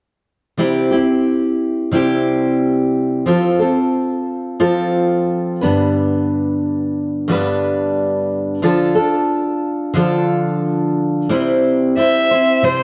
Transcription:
0.57 0.91 C3 medium
0.57 0.92 G3 medium
0.57 0.92 C4 medium
0.57 0.91 E4 medium
0.57 0.90 G4 medium
0.91 1.92 C4 soft
0.91 1.93 E4 soft
0.91 1.92 G4 soft
1.91 3.26 C3 medium
1.91 3.25 G3 medium
1.91 3.26 C4 medium
1.91 3.27 E4 medium
1.91 3.28 G4 medium
3.26 3.59 F3 medium
3.26 3.60 C4 medium
3.26 3.60 F4 medium
3.26 3.58 A4 medium
3.59 4.59 C4 soft
3.59 4.59 F4 soft
3.59 4.60 A4 soft
4.60 5.60 F3 medium
4.60 5.60 C4 medium
4.60 5.60 F4 medium
4.60 5.61 A4 medium
5.61 7.27 G2 soft
5.61 7.28 D3 soft
5.61 7.28 G3 soft
5.61 7.29 B3 medium
5.61 7.30 D4 medium
5.61 7.28 B4 soft
7.28 8.62 G2 medium
7.28 8.62 D3 medium
7.28 8.62 G3 medium
7.28 8.63 B3 medium
7.28 8.63 D4 medium
7.28 8.64 B4 medium
8.62 8.95 D3 medium
8.62 8.96 F3 medium
8.62 8.96 D4 medium
8.62 8.96 F4 medium
8.62 8.94 A4 medium
8.95 9.94 D4 soft
8.95 9.95 F4 soft
8.95 9.96 A4 medium
9.94 11.29 D3 medium
9.94 11.29 F3 medium
9.94 11.29 D4 medium
9.94 11.30 F4 medium
9.94 11.30 A4 medium
11.29 11.96 C3 medium
11.29 11.95 G3 medium
11.29 11.97 C4 medium
11.29 11.97 E4 medium
11.29 11.98 C5 medium
11.96 12.30 G3 soft
11.96 12.30 C4 soft
11.96 12.31 E4 soft
11.96 12.30 C5 medium
11.96 12.66 E5 medium
12.31 12.62 C4 soft
12.31 12.63 E4 soft
12.31 12.63 C5 soft
12.63 12.83 C3 medium
12.63 12.83 G3 medium
12.63 12.83 C4 medium
12.63 12.83 E4 medium
12.63 12.83 C5 medium

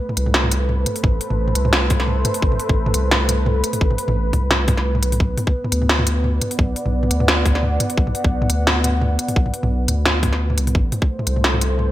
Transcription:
0.00 5.20 A3 medium
0.00 5.94 A4 medium
0.00 10.75 B4 loud
0.00 0.41 D5 loud
0.00 0.54 F#5 medium
0.09 mid tom medium
0.17 0.85 C2 loud
0.17 closed hi-hat medium
0.26 mid tom medium
0.32 5.20 C5 medium
0.32 snare loud
0.44 mid tom medium
0.52 closed hi-hat medium
0.69 mid tom medium
0.86 closed hi-hat medium
0.86 mid tom medium
0.96 open hi-hat medium
1.03 1.20 A1 loud
1.03 kick loud
1.03 mid tom medium
1.21 open hi-hat medium
1.30 1.55 A1 medium
1.30 mid tom medium
1.48 mid tom medium
1.55 2.24 C2 loud
1.55 closed hi-hat medium
1.65 mid tom medium
1.73 snare loud
1.90 kick loud
1.90 mid tom medium
1.90 open hi-hat medium
2.00 snare soft
2.08 mid tom medium
2.25 closed hi-hat medium
2.25 mid tom medium
2.34 open hi-hat medium
2.42 2.59 A1 loud
2.42 kick loud
2.52 mid tom medium
2.60 open hi-hat medium
2.69 2.94 A1 medium
2.69 kick loud
2.69 mid tom medium
2.86 mid tom medium
2.94 3.63 C2 loud
2.94 closed hi-hat medium
3.11 snare loud
3.11 mid tom medium
3.29 closed hi-hat medium
3.29 mid tom medium
3.46 mid tom medium
3.64 closed hi-hat medium
3.73 mid tom medium
3.73 open hi-hat medium
3.81 3.97 A1 loud
3.81 kick loud
3.91 mid tom medium
3.98 open hi-hat medium
4.08 4.32 A1 medium
4.08 mid tom medium
4.33 5.04 C2 loud
4.33 kick medium
4.33 mid tom medium
4.33 open hi-hat soft
4.51 snare loud
4.51 mid tom medium
4.68 kick loud
4.68 mid tom medium
4.68 open hi-hat medium
4.77 snare soft
4.95 mid tom medium
5.03 5.19 B1 loud
5.03 closed hi-hat medium
5.12 mid tom medium
5.12 open hi-hat medium
5.20 5.36 B1 loud
5.20 10.75 B3 loud
5.20 kick loud
5.20 mid tom medium
5.38 mid tom medium
5.38 open hi-hat medium
5.47 kick loud
5.64 mid tom medium
5.72 6.40 D2 loud
5.72 11.46 F#5 medium
5.72 closed hi-hat medium
5.79 11.74 D5 medium
5.79 mid tom medium
5.89 snare loud
5.99 mid tom medium
6.07 closed hi-hat medium
6.24 mid tom medium
6.42 closed hi-hat medium
6.42 mid tom medium
6.51 open hi-hat medium
6.59 6.75 B1 loud
6.59 kick loud
6.59 mid tom medium
6.76 open hi-hat medium
6.86 7.10 B1 medium
6.86 mid tom medium
7.03 mid tom medium
7.11 7.79 D2 loud
7.11 closed hi-hat medium
7.20 mid tom medium
7.28 snare loud
7.46 kick loud
7.46 mid tom medium
7.46 open hi-hat medium
7.55 snare soft
7.63 mid tom medium
7.80 closed hi-hat medium
7.80 mid tom medium
7.90 open hi-hat medium
7.97 8.14 B1 loud
7.97 kick loud
8.07 mid tom medium
8.15 open hi-hat medium
8.24 8.49 B1 medium
8.24 kick loud
8.24 mid tom medium
8.42 mid tom medium
8.50 9.18 D2 loud
8.50 closed hi-hat medium
8.67 snare loud
8.67 mid tom medium
8.84 closed hi-hat medium
8.84 mid tom soft
9.02 mid tom medium
9.19 closed hi-hat medium
9.28 mid tom medium
9.28 open hi-hat medium
9.36 9.52 B1 loud
9.36 kick loud
9.46 mid tom medium
9.54 open hi-hat medium
9.63 9.87 B1 medium
9.63 mid tom medium
9.88 10.59 D2 loud
9.88 closed hi-hat medium
9.88 mid tom soft
10.05 snare loud
10.05 mid tom soft
10.23 kick loud
10.23 mid tom medium
10.23 open hi-hat medium
10.33 snare soft
10.50 mid tom medium
10.58 10.74 C2 loud
10.58 closed hi-hat medium
10.67 mid tom medium
10.67 open hi-hat medium
10.75 10.91 A1 loud
10.75 11.92 A3 medium
10.75 kick loud
10.75 mid tom medium
10.87 11.92 A4 medium
10.87 11.92 C5 medium
10.92 mid tom medium
10.92 open hi-hat medium
11.02 kick loud
11.19 11.92 B4 loud
11.19 mid tom soft
11.27 11.92 C2 loud
11.27 closed hi-hat medium
11.36 mid tom medium
11.44 snare loud
11.54 mid tom medium
11.61 closed hi-hat medium
11.79 mid tom medium

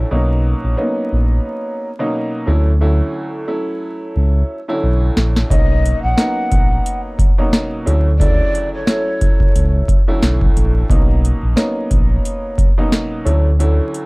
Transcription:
0.11 0.54 B1 loud
0.11 0.74 B2 loud
0.11 0.74 F#3 medium
0.11 0.74 A#3 medium
0.11 0.74 C#4 medium
0.11 0.74 D#4 medium
0.64 0.76 A#1 medium
0.77 1.88 F#3 medium
0.77 1.88 A#3 medium
0.77 1.87 B3 medium
0.77 1.88 C#4 medium
0.77 1.88 D#4 medium
1.12 1.40 A#1 medium
1.99 2.47 B2 loud
1.99 2.45 F#3 medium
1.99 2.47 A#3 medium
1.99 2.46 C#4 medium
1.99 2.47 D#4 loud
2.46 2.69 D2 medium
2.46 3.02 D2 loud
2.46 2.69 F#3 medium
2.46 2.69 A3 medium
2.46 2.69 C#4 medium
2.46 2.69 E4 loud
2.81 3.43 D2 medium
2.81 3.44 F#3 medium
2.81 3.44 A3 medium
2.81 3.44 C#4 medium
2.81 3.44 E4 loud
3.47 4.57 F#3 medium
3.47 4.57 A3 medium
3.47 4.57 C#4 medium
3.47 4.58 E4 loud
4.16 4.43 C#2 loud
4.68 5.44 D2 medium
4.68 5.45 F#3 medium
4.68 5.45 A3 medium
4.68 5.45 C#4 medium
4.68 5.45 E4 loud
4.83 5.10 B1 medium
5.17 5.44 A#1 loud
5.17 snare loud
5.36 snare medium
5.49 5.93 B1 loud
5.49 6.13 B2 loud
5.49 6.13 F#3 medium
5.49 6.13 A#3 medium
5.49 6.13 C#4 medium
5.49 6.14 D#4 medium
5.49 6.00 D#5 loud
5.49 kick loud
5.49 closed hi-hat medium
5.86 closed hi-hat medium
6.02 6.15 A#1 medium
6.02 7.00 F#5 medium
6.17 7.27 F#3 medium
6.17 7.27 A#3 medium
6.17 7.27 B3 medium
6.17 7.27 C#4 medium
6.17 7.27 D#4 loud
6.17 snare loud
6.17 closed hi-hat medium
6.52 6.79 A#1 medium
6.52 kick medium
6.52 closed hi-hat medium
6.86 closed hi-hat loud
7.19 kick loud
7.19 closed hi-hat medium
7.38 7.86 B2 loud
7.38 7.84 F#3 medium
7.38 7.86 A#3 medium
7.38 7.85 C#4 medium
7.38 7.87 D#4 loud
7.53 snare loud
7.53 closed hi-hat medium
7.85 8.08 D2 medium
7.85 8.41 D2 loud
7.85 8.08 F#3 medium
7.85 8.08 A3 medium
7.85 8.08 C#4 medium
7.85 8.08 E4 loud
7.85 closed hi-hat medium
8.18 8.83 D2 medium
8.18 8.83 C#3 medium
8.18 8.83 F#3 medium
8.18 8.83 A3 medium
8.18 8.83 E4 loud
8.18 8.69 D5 loud
8.18 kick loud
8.18 closed hi-hat medium
8.55 closed hi-hat medium
8.74 9.71 C#5 medium
8.86 9.96 F#3 medium
8.86 9.97 A3 medium
8.86 9.97 C#4 medium
8.86 9.97 E4 loud
8.86 snare loud
8.86 closed hi-hat medium
9.21 kick medium
9.21 closed hi-hat medium
9.40 kick medium
9.55 9.82 C#2 loud
9.55 closed hi-hat loud
9.88 kick loud
9.88 closed hi-hat medium
10.08 10.84 D2 medium
10.08 10.84 F#3 medium
10.08 10.84 A3 medium
10.08 10.84 C#4 medium
10.08 10.84 E4 loud
10.23 10.50 B1 medium
10.23 snare loud
10.23 closed hi-hat medium
10.41 kick medium
10.56 10.83 A#1 loud
10.56 closed hi-hat medium
10.90 11.33 B1 loud
10.90 11.52 B2 loud
10.90 11.53 F#3 medium
10.90 11.53 A#3 medium
10.90 11.53 C#4 medium
10.90 11.53 D#4 loud
10.90 kick loud
10.90 closed hi-hat medium
11.25 closed hi-hat medium
11.43 11.55 A#1 medium
11.56 12.66 F#3 medium
11.56 12.66 A#3 medium
11.56 12.66 B3 medium
11.56 12.66 C#4 medium
11.56 12.67 D#4 loud
11.56 snare loud
11.56 closed hi-hat medium
11.91 12.18 A#1 medium
11.91 kick medium
11.91 closed hi-hat medium
12.25 closed hi-hat loud
12.58 kick medium
12.58 closed hi-hat medium
12.78 13.26 B2 loud
12.78 13.24 F#3 medium
12.78 13.26 A#3 medium
12.78 13.24 C#4 medium
12.78 13.26 D#4 loud
12.92 snare loud
12.92 closed hi-hat medium
13.25 13.47 D2 medium
13.25 13.80 D2 loud
13.25 13.47 F#3 medium
13.25 13.47 A3 medium
13.25 13.48 C#4 medium
13.25 13.48 E4 medium
13.25 closed hi-hat medium
13.59 14.06 D2 medium
13.59 14.06 F#3 medium
13.59 14.06 A3 medium
13.59 14.06 C#4 medium
13.59 14.06 E4 loud
13.59 closed hi-hat medium
13.94 closed hi-hat medium

